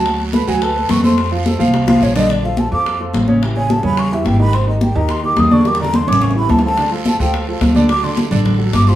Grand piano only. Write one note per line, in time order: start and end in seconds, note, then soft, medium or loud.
0.05 0.28 F#3 medium
0.05 0.29 F#4 medium
0.05 0.29 F#5 medium
0.33 0.45 A3 medium
0.33 0.45 A4 medium
0.33 0.45 B4 medium
0.48 0.59 F#3 loud
0.48 0.60 F#4 medium
0.48 0.59 F#5 loud
0.61 0.73 A3 medium
0.61 0.73 A4 medium
0.61 0.73 B4 medium
0.76 0.99 A3 medium
0.76 0.99 A4 medium
0.76 0.99 B4 medium
1.03 1.26 A3 medium
1.03 1.27 A4 medium
1.03 1.27 C5 medium
1.31 1.43 F3 medium
1.31 1.43 F4 medium
1.31 1.43 F5 medium
1.46 1.57 A3 medium
1.46 1.57 A4 medium
1.46 1.58 C5 medium
1.59 1.82 F3 loud
1.59 1.82 F4 loud
1.59 1.83 F5 loud
1.87 2.10 F3 medium
1.87 2.11 F4 medium
1.87 2.11 F5 medium
2.15 2.27 D3 loud
2.15 2.27 D4 loud
2.15 2.27 D5 loud
2.30 2.42 D3 medium
2.30 2.42 D4 medium
2.30 2.42 D5 medium
2.43 2.66 F3 medium
2.43 2.66 F4 medium
2.43 2.67 A4 medium
2.72 2.95 F3 medium
2.72 2.95 F4 medium
2.72 2.95 A4 medium
3.00 3.23 F3 medium
3.00 3.23 F4 medium
3.00 3.23 A4 medium
3.28 3.39 C#3 medium
3.28 3.39 C#4 medium
3.28 3.40 C#5 medium
3.42 3.53 E3 medium
3.42 3.53 E4 medium
3.42 3.54 G4 medium
3.56 3.79 C#3 medium
3.56 3.79 C#4 medium
3.56 3.79 C#5 medium
3.83 4.06 C#3 medium
3.83 4.06 C#4 medium
3.83 4.07 C#5 medium
4.12 4.35 E3 medium
4.12 4.35 E4 medium
4.12 4.35 G4 medium
4.40 4.51 D#3 medium
4.40 4.51 D#4 medium
4.40 4.51 G4 medium
4.53 4.65 C3 medium
4.53 4.65 C4 medium
4.53 4.65 C5 medium
4.67 4.90 D#3 medium
4.67 4.90 D#4 medium
4.67 4.91 G4 medium
4.95 5.18 D#3 medium
4.95 5.18 D#4 medium
4.95 5.19 G4 medium
5.24 5.47 D#3 medium
5.24 5.47 D#4 medium
5.24 5.47 G4 medium
5.51 5.63 D3 medium
5.51 5.63 D4 medium
5.51 5.63 D5 loud
5.66 5.77 G3 medium
5.66 5.77 G4 medium
5.66 5.78 A#4 medium
5.80 6.03 D3 medium
5.80 6.03 D4 medium
5.80 6.03 D5 medium
6.07 6.30 C#3 medium
6.07 6.30 C#4 medium
6.07 6.31 C#5 loud
6.35 6.58 E3 medium
6.35 6.58 E4 medium
6.35 6.58 G4 medium
6.63 6.75 F3 medium
6.63 6.75 F4 medium
6.63 6.75 A4 medium
6.77 6.89 D3 medium
6.77 6.89 D4 medium
6.77 6.89 D5 medium
6.91 7.14 F3 medium
6.91 7.14 F4 medium
6.91 7.14 A4 medium
7.19 7.42 F3 medium
7.19 7.43 F4 medium
7.19 7.43 A4 medium
7.48 7.70 F3 medium
7.48 7.71 F4 medium
7.48 7.71 A4 medium
7.76 7.87 D3 medium
7.76 7.87 D4 medium
7.76 7.87 D5 loud
7.89 8.01 F#3 medium
7.89 8.01 F#4 medium
7.89 8.01 A4 medium
8.03 8.26 D3 medium
8.03 8.26 D4 medium
8.03 8.26 D5 medium
8.31 8.54 D3 medium
8.31 8.54 D4 loud
8.31 8.54 D5 medium
8.59 8.82 F#3 medium
8.59 8.82 F#4 medium
8.59 8.82 A4 medium
8.88 8.95 F3 medium
8.88 8.95 F4 medium
8.88 8.95 G4 medium